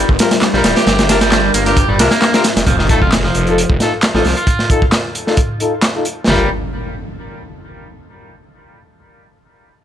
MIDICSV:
0, 0, Header, 1, 7, 480
1, 0, Start_track
1, 0, Tempo, 451128
1, 921, Time_signature, 4, 2, 24, 8
1, 10476, End_track
2, 0, Start_track
2, 0, Title_t, "Brass ensemble"
2, 0, Program_c, 0, 61
2, 201, Note_on_c, 0, 70, 107
2, 202, Note_on_c, 0, 65, 101
2, 202, Note_on_c, 0, 67, 89
2, 331, Note_off_c, 0, 65, 0
2, 331, Note_off_c, 0, 67, 0
2, 331, Note_off_c, 0, 70, 0
2, 571, Note_on_c, 0, 67, 91
2, 572, Note_on_c, 0, 65, 100
2, 572, Note_on_c, 0, 70, 109
2, 683, Note_off_c, 0, 65, 0
2, 683, Note_off_c, 0, 67, 0
2, 683, Note_off_c, 0, 70, 0
2, 1159, Note_on_c, 0, 65, 101
2, 1159, Note_on_c, 0, 67, 93
2, 1161, Note_on_c, 0, 70, 116
2, 1290, Note_off_c, 0, 65, 0
2, 1290, Note_off_c, 0, 67, 0
2, 1291, Note_off_c, 0, 70, 0
2, 1765, Note_on_c, 0, 65, 92
2, 1765, Note_on_c, 0, 70, 105
2, 1766, Note_on_c, 0, 67, 84
2, 1879, Note_off_c, 0, 65, 0
2, 1879, Note_off_c, 0, 70, 0
2, 1880, Note_off_c, 0, 67, 0
2, 2116, Note_on_c, 0, 70, 112
2, 2117, Note_on_c, 0, 65, 102
2, 2117, Note_on_c, 0, 67, 91
2, 2248, Note_off_c, 0, 70, 0
2, 2249, Note_off_c, 0, 65, 0
2, 2249, Note_off_c, 0, 67, 0
2, 2483, Note_on_c, 0, 65, 100
2, 2484, Note_on_c, 0, 67, 90
2, 2485, Note_on_c, 0, 70, 110
2, 2598, Note_off_c, 0, 65, 0
2, 2599, Note_off_c, 0, 67, 0
2, 2599, Note_off_c, 0, 70, 0
2, 3076, Note_on_c, 0, 63, 95
2, 3076, Note_on_c, 0, 69, 109
2, 3078, Note_on_c, 0, 65, 86
2, 3208, Note_off_c, 0, 63, 0
2, 3208, Note_off_c, 0, 69, 0
2, 3209, Note_off_c, 0, 65, 0
2, 3687, Note_on_c, 0, 63, 91
2, 3687, Note_on_c, 0, 65, 83
2, 3688, Note_on_c, 0, 69, 103
2, 3800, Note_off_c, 0, 65, 0
2, 3801, Note_off_c, 0, 63, 0
2, 3801, Note_off_c, 0, 69, 0
2, 4037, Note_on_c, 0, 69, 105
2, 4038, Note_on_c, 0, 65, 86
2, 4039, Note_on_c, 0, 63, 94
2, 4169, Note_off_c, 0, 65, 0
2, 4169, Note_off_c, 0, 69, 0
2, 4170, Note_off_c, 0, 63, 0
2, 4409, Note_on_c, 0, 63, 91
2, 4409, Note_on_c, 0, 65, 86
2, 4409, Note_on_c, 0, 69, 100
2, 4521, Note_off_c, 0, 63, 0
2, 4521, Note_off_c, 0, 69, 0
2, 4522, Note_off_c, 0, 65, 0
2, 4999, Note_on_c, 0, 63, 98
2, 5000, Note_on_c, 0, 65, 86
2, 5000, Note_on_c, 0, 69, 112
2, 5130, Note_off_c, 0, 63, 0
2, 5130, Note_off_c, 0, 65, 0
2, 5130, Note_off_c, 0, 69, 0
2, 5607, Note_on_c, 0, 63, 90
2, 5607, Note_on_c, 0, 69, 103
2, 5608, Note_on_c, 0, 65, 88
2, 5721, Note_off_c, 0, 63, 0
2, 5721, Note_off_c, 0, 65, 0
2, 5721, Note_off_c, 0, 69, 0
2, 5961, Note_on_c, 0, 65, 87
2, 5962, Note_on_c, 0, 69, 104
2, 5963, Note_on_c, 0, 63, 92
2, 6091, Note_off_c, 0, 65, 0
2, 6091, Note_off_c, 0, 69, 0
2, 6092, Note_off_c, 0, 63, 0
2, 6328, Note_on_c, 0, 65, 84
2, 6329, Note_on_c, 0, 69, 102
2, 6330, Note_on_c, 0, 63, 92
2, 6441, Note_off_c, 0, 65, 0
2, 6441, Note_off_c, 0, 69, 0
2, 6442, Note_off_c, 0, 63, 0
2, 6681, Note_on_c, 0, 65, 86
2, 6681, Note_on_c, 0, 70, 92
2, 6683, Note_on_c, 0, 67, 76
2, 6863, Note_off_c, 0, 65, 0
2, 6863, Note_off_c, 0, 70, 0
2, 6864, Note_off_c, 0, 67, 0
2, 10476, End_track
3, 0, Start_track
3, 0, Title_t, "Ambient pad"
3, 0, Program_c, 1, 92
3, 0, Note_on_c, 1, 55, 82
3, 0, Note_on_c, 1, 62, 76
3, 0, Note_on_c, 1, 65, 78
3, 0, Note_on_c, 1, 70, 93
3, 2805, Note_off_c, 1, 55, 0
3, 2806, Note_off_c, 1, 62, 0
3, 2806, Note_off_c, 1, 65, 0
3, 2807, Note_off_c, 1, 70, 0
3, 10476, End_track
4, 0, Start_track
4, 0, Title_t, "Clean electric guitar"
4, 0, Program_c, 2, 27
4, 573, Note_on_c, 2, 55, 78
4, 799, Note_off_c, 2, 55, 0
4, 809, Note_on_c, 2, 67, 75
4, 1150, Note_off_c, 2, 67, 0
4, 1164, Note_on_c, 2, 62, 77
4, 1253, Note_off_c, 2, 62, 0
4, 1294, Note_on_c, 2, 55, 79
4, 1632, Note_off_c, 2, 55, 0
4, 1641, Note_on_c, 2, 58, 82
4, 1732, Note_off_c, 2, 58, 0
4, 1771, Note_on_c, 2, 67, 80
4, 1998, Note_off_c, 2, 67, 0
4, 2009, Note_on_c, 2, 55, 77
4, 2115, Note_off_c, 2, 55, 0
4, 2118, Note_on_c, 2, 62, 80
4, 2210, Note_off_c, 2, 62, 0
4, 2242, Note_on_c, 2, 58, 103
4, 2473, Note_off_c, 2, 58, 0
4, 2489, Note_on_c, 2, 60, 81
4, 2568, Note_off_c, 2, 60, 0
4, 2838, Note_on_c, 2, 53, 83
4, 2956, Note_off_c, 2, 53, 0
4, 2968, Note_on_c, 2, 51, 80
4, 3047, Note_off_c, 2, 51, 0
4, 3086, Note_on_c, 2, 57, 96
4, 3174, Note_off_c, 2, 57, 0
4, 3211, Note_on_c, 2, 65, 73
4, 3289, Note_off_c, 2, 65, 0
4, 3449, Note_on_c, 2, 53, 76
4, 3916, Note_off_c, 2, 53, 0
4, 4413, Note_on_c, 2, 53, 76
4, 4639, Note_off_c, 2, 53, 0
4, 4650, Note_on_c, 2, 65, 70
4, 4990, Note_off_c, 2, 65, 0
4, 6679, Note_on_c, 2, 55, 95
4, 6903, Note_off_c, 2, 55, 0
4, 10476, End_track
5, 0, Start_track
5, 0, Title_t, "Detuned saw bass"
5, 0, Program_c, 3, 39
5, 96, Note_on_c, 3, 31, 107
5, 180, Note_off_c, 3, 31, 0
5, 570, Note_on_c, 3, 34, 98
5, 657, Note_off_c, 3, 34, 0
5, 683, Note_on_c, 3, 26, 87
5, 783, Note_off_c, 3, 26, 0
5, 920, Note_on_c, 3, 31, 105
5, 1602, Note_off_c, 3, 31, 0
5, 1640, Note_on_c, 3, 31, 89
5, 1964, Note_off_c, 3, 31, 0
5, 2007, Note_on_c, 3, 31, 106
5, 2095, Note_off_c, 3, 31, 0
5, 2118, Note_on_c, 3, 36, 107
5, 2220, Note_off_c, 3, 36, 0
5, 2729, Note_on_c, 3, 29, 85
5, 2816, Note_off_c, 3, 29, 0
5, 2837, Note_on_c, 3, 29, 99
5, 3520, Note_off_c, 3, 29, 0
5, 3565, Note_on_c, 3, 29, 84
5, 3887, Note_off_c, 3, 29, 0
5, 3932, Note_on_c, 3, 29, 104
5, 4018, Note_off_c, 3, 29, 0
5, 4409, Note_on_c, 3, 33, 94
5, 4496, Note_off_c, 3, 33, 0
5, 4522, Note_on_c, 3, 36, 84
5, 4622, Note_off_c, 3, 36, 0
5, 6678, Note_on_c, 3, 31, 97
5, 6903, Note_off_c, 3, 31, 0
5, 10476, End_track
6, 0, Start_track
6, 0, Title_t, "Impact"
6, 0, Program_c, 4, 103
6, 2840, Note_on_c, 4, 60, 70
6, 4761, Note_off_c, 4, 60, 0
6, 6681, Note_on_c, 4, 60, 66
6, 8601, Note_off_c, 4, 60, 0
6, 10476, End_track
7, 0, Start_track
7, 0, Title_t, "Drums"
7, 95, Note_on_c, 9, 36, 95
7, 202, Note_off_c, 9, 36, 0
7, 202, Note_on_c, 9, 42, 72
7, 202, Note_on_c, 9, 51, 89
7, 203, Note_off_c, 9, 42, 0
7, 203, Note_on_c, 9, 42, 78
7, 214, Note_on_c, 9, 38, 112
7, 308, Note_off_c, 9, 51, 0
7, 310, Note_off_c, 9, 42, 0
7, 321, Note_off_c, 9, 38, 0
7, 332, Note_on_c, 9, 42, 42
7, 332, Note_on_c, 9, 51, 52
7, 333, Note_off_c, 9, 42, 0
7, 333, Note_on_c, 9, 38, 113
7, 333, Note_on_c, 9, 42, 78
7, 438, Note_off_c, 9, 42, 0
7, 438, Note_off_c, 9, 51, 0
7, 438, Note_on_c, 9, 42, 74
7, 440, Note_off_c, 9, 38, 0
7, 443, Note_off_c, 9, 42, 0
7, 443, Note_on_c, 9, 39, 100
7, 443, Note_on_c, 9, 42, 31
7, 448, Note_on_c, 9, 38, 103
7, 549, Note_off_c, 9, 39, 0
7, 549, Note_off_c, 9, 42, 0
7, 554, Note_off_c, 9, 38, 0
7, 570, Note_on_c, 9, 38, 54
7, 677, Note_off_c, 9, 38, 0
7, 681, Note_on_c, 9, 42, 73
7, 681, Note_on_c, 9, 51, 86
7, 685, Note_on_c, 9, 38, 119
7, 688, Note_off_c, 9, 42, 0
7, 688, Note_on_c, 9, 42, 87
7, 788, Note_off_c, 9, 51, 0
7, 791, Note_off_c, 9, 38, 0
7, 795, Note_off_c, 9, 42, 0
7, 813, Note_on_c, 9, 42, 41
7, 818, Note_on_c, 9, 38, 98
7, 820, Note_off_c, 9, 42, 0
7, 820, Note_on_c, 9, 42, 81
7, 923, Note_off_c, 9, 42, 0
7, 923, Note_on_c, 9, 42, 35
7, 925, Note_off_c, 9, 38, 0
7, 929, Note_on_c, 9, 38, 109
7, 930, Note_off_c, 9, 42, 0
7, 930, Note_on_c, 9, 42, 89
7, 1035, Note_off_c, 9, 38, 0
7, 1037, Note_off_c, 9, 42, 0
7, 1049, Note_on_c, 9, 42, 88
7, 1054, Note_on_c, 9, 38, 103
7, 1155, Note_off_c, 9, 42, 0
7, 1160, Note_off_c, 9, 38, 0
7, 1162, Note_on_c, 9, 42, 76
7, 1162, Note_on_c, 9, 51, 89
7, 1165, Note_on_c, 9, 38, 106
7, 1169, Note_off_c, 9, 42, 0
7, 1169, Note_on_c, 9, 42, 86
7, 1268, Note_off_c, 9, 51, 0
7, 1271, Note_off_c, 9, 38, 0
7, 1275, Note_off_c, 9, 42, 0
7, 1287, Note_on_c, 9, 42, 81
7, 1290, Note_on_c, 9, 38, 106
7, 1291, Note_off_c, 9, 42, 0
7, 1291, Note_on_c, 9, 42, 46
7, 1396, Note_off_c, 9, 38, 0
7, 1397, Note_off_c, 9, 42, 0
7, 1402, Note_on_c, 9, 39, 103
7, 1402, Note_on_c, 9, 42, 88
7, 1405, Note_on_c, 9, 38, 127
7, 1508, Note_off_c, 9, 39, 0
7, 1509, Note_off_c, 9, 42, 0
7, 1511, Note_off_c, 9, 38, 0
7, 1640, Note_on_c, 9, 42, 77
7, 1640, Note_on_c, 9, 51, 93
7, 1641, Note_off_c, 9, 42, 0
7, 1641, Note_on_c, 9, 42, 63
7, 1746, Note_off_c, 9, 51, 0
7, 1747, Note_off_c, 9, 42, 0
7, 1769, Note_on_c, 9, 42, 44
7, 1775, Note_on_c, 9, 38, 37
7, 1875, Note_off_c, 9, 42, 0
7, 1878, Note_on_c, 9, 42, 31
7, 1879, Note_off_c, 9, 42, 0
7, 1879, Note_on_c, 9, 42, 92
7, 1880, Note_on_c, 9, 36, 111
7, 1881, Note_off_c, 9, 38, 0
7, 1986, Note_off_c, 9, 42, 0
7, 1987, Note_off_c, 9, 36, 0
7, 2121, Note_on_c, 9, 42, 76
7, 2121, Note_on_c, 9, 51, 94
7, 2127, Note_off_c, 9, 42, 0
7, 2127, Note_on_c, 9, 42, 86
7, 2128, Note_on_c, 9, 38, 99
7, 2227, Note_off_c, 9, 51, 0
7, 2233, Note_off_c, 9, 42, 0
7, 2234, Note_off_c, 9, 38, 0
7, 2244, Note_on_c, 9, 38, 105
7, 2248, Note_on_c, 9, 42, 75
7, 2250, Note_off_c, 9, 42, 0
7, 2250, Note_on_c, 9, 42, 42
7, 2350, Note_off_c, 9, 38, 0
7, 2356, Note_off_c, 9, 42, 0
7, 2357, Note_on_c, 9, 42, 71
7, 2359, Note_on_c, 9, 38, 100
7, 2364, Note_off_c, 9, 42, 0
7, 2364, Note_on_c, 9, 39, 103
7, 2364, Note_on_c, 9, 42, 34
7, 2465, Note_off_c, 9, 38, 0
7, 2470, Note_off_c, 9, 39, 0
7, 2470, Note_off_c, 9, 42, 0
7, 2487, Note_on_c, 9, 42, 77
7, 2492, Note_on_c, 9, 38, 109
7, 2593, Note_off_c, 9, 42, 0
7, 2594, Note_on_c, 9, 42, 88
7, 2599, Note_off_c, 9, 38, 0
7, 2600, Note_on_c, 9, 38, 99
7, 2601, Note_off_c, 9, 42, 0
7, 2601, Note_on_c, 9, 42, 77
7, 2601, Note_on_c, 9, 51, 90
7, 2707, Note_off_c, 9, 38, 0
7, 2708, Note_off_c, 9, 42, 0
7, 2708, Note_off_c, 9, 51, 0
7, 2731, Note_on_c, 9, 42, 84
7, 2732, Note_off_c, 9, 42, 0
7, 2732, Note_on_c, 9, 38, 97
7, 2732, Note_on_c, 9, 42, 43
7, 2732, Note_on_c, 9, 51, 52
7, 2836, Note_off_c, 9, 42, 0
7, 2836, Note_on_c, 9, 42, 92
7, 2837, Note_on_c, 9, 36, 118
7, 2838, Note_off_c, 9, 51, 0
7, 2839, Note_off_c, 9, 38, 0
7, 2942, Note_off_c, 9, 42, 0
7, 2943, Note_off_c, 9, 36, 0
7, 2967, Note_on_c, 9, 38, 46
7, 3074, Note_off_c, 9, 38, 0
7, 3078, Note_on_c, 9, 42, 65
7, 3080, Note_on_c, 9, 36, 89
7, 3185, Note_off_c, 9, 42, 0
7, 3186, Note_off_c, 9, 36, 0
7, 3210, Note_on_c, 9, 36, 90
7, 3316, Note_off_c, 9, 36, 0
7, 3320, Note_on_c, 9, 39, 96
7, 3323, Note_on_c, 9, 42, 83
7, 3328, Note_on_c, 9, 38, 112
7, 3426, Note_off_c, 9, 39, 0
7, 3429, Note_off_c, 9, 42, 0
7, 3435, Note_off_c, 9, 38, 0
7, 3446, Note_on_c, 9, 38, 36
7, 3552, Note_off_c, 9, 38, 0
7, 3560, Note_on_c, 9, 42, 63
7, 3667, Note_off_c, 9, 42, 0
7, 3689, Note_on_c, 9, 42, 42
7, 3796, Note_off_c, 9, 42, 0
7, 3810, Note_on_c, 9, 42, 82
7, 3916, Note_off_c, 9, 42, 0
7, 3932, Note_on_c, 9, 36, 89
7, 4039, Note_off_c, 9, 36, 0
7, 4044, Note_on_c, 9, 42, 68
7, 4045, Note_on_c, 9, 38, 58
7, 4150, Note_off_c, 9, 42, 0
7, 4151, Note_off_c, 9, 38, 0
7, 4277, Note_on_c, 9, 42, 78
7, 4284, Note_on_c, 9, 39, 105
7, 4288, Note_on_c, 9, 38, 101
7, 4383, Note_off_c, 9, 42, 0
7, 4391, Note_off_c, 9, 39, 0
7, 4395, Note_off_c, 9, 38, 0
7, 4413, Note_on_c, 9, 38, 57
7, 4517, Note_on_c, 9, 46, 84
7, 4520, Note_off_c, 9, 38, 0
7, 4529, Note_on_c, 9, 38, 43
7, 4624, Note_off_c, 9, 46, 0
7, 4636, Note_off_c, 9, 38, 0
7, 4648, Note_on_c, 9, 42, 44
7, 4754, Note_off_c, 9, 42, 0
7, 4754, Note_on_c, 9, 42, 84
7, 4755, Note_on_c, 9, 36, 103
7, 4860, Note_off_c, 9, 42, 0
7, 4862, Note_off_c, 9, 36, 0
7, 4884, Note_on_c, 9, 38, 48
7, 4990, Note_off_c, 9, 38, 0
7, 4998, Note_on_c, 9, 42, 69
7, 4999, Note_on_c, 9, 36, 99
7, 5105, Note_off_c, 9, 36, 0
7, 5105, Note_off_c, 9, 42, 0
7, 5129, Note_on_c, 9, 36, 101
7, 5235, Note_off_c, 9, 36, 0
7, 5236, Note_on_c, 9, 38, 124
7, 5237, Note_on_c, 9, 42, 80
7, 5241, Note_on_c, 9, 39, 106
7, 5342, Note_off_c, 9, 38, 0
7, 5343, Note_off_c, 9, 42, 0
7, 5348, Note_off_c, 9, 39, 0
7, 5480, Note_on_c, 9, 42, 69
7, 5586, Note_off_c, 9, 42, 0
7, 5610, Note_on_c, 9, 38, 39
7, 5713, Note_on_c, 9, 42, 86
7, 5717, Note_off_c, 9, 38, 0
7, 5718, Note_on_c, 9, 36, 109
7, 5819, Note_off_c, 9, 42, 0
7, 5824, Note_off_c, 9, 36, 0
7, 5959, Note_on_c, 9, 42, 65
7, 6065, Note_off_c, 9, 42, 0
7, 6192, Note_on_c, 9, 42, 79
7, 6196, Note_on_c, 9, 38, 104
7, 6201, Note_on_c, 9, 39, 108
7, 6299, Note_off_c, 9, 42, 0
7, 6302, Note_off_c, 9, 38, 0
7, 6308, Note_off_c, 9, 39, 0
7, 6438, Note_on_c, 9, 42, 66
7, 6544, Note_off_c, 9, 42, 0
7, 6677, Note_on_c, 9, 38, 102
7, 6677, Note_on_c, 9, 49, 93
7, 6783, Note_off_c, 9, 38, 0
7, 6783, Note_off_c, 9, 49, 0
7, 10476, End_track
0, 0, End_of_file